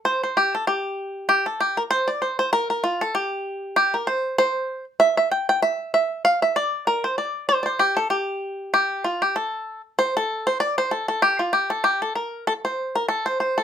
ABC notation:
X:1
M:4/4
L:1/16
Q:"Swing" 1/4=194
K:Gdor
V:1 name="Five-string banjo"
c2 c2 G2 A2 G8 | G2 A2 G2 B2 c2 d2 c2 c2 | B2 B2 F2 A2 G8 | G2 B2 c4 c6 z2 |
e2 e2 g2 g2 e4 e4 | f2 e2 d4 B2 c2 d4 | c3/2 d/2 c2 G2 A2 G8 | G4 F2 G2 A6 z2 |
c2 A4 c2 d2 c2 A2 A2 | G2 F2 G2 A2 G2 A2 B4 | A2 c4 B2 A2 c2 c2 A2 |]